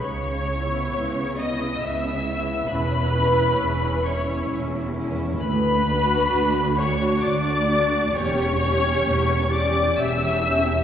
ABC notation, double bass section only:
X:1
M:3/4
L:1/8
Q:1/4=66
K:C#dor
V:1 name="Double bass section" clef=bass
C,,2 C,,2 C,,2 | E,,,2 E,,,2 E,,,2 | [K:Bm] D,,2 D,,2 D,,2 | E,,,2 E,,,2 E,,,2 |]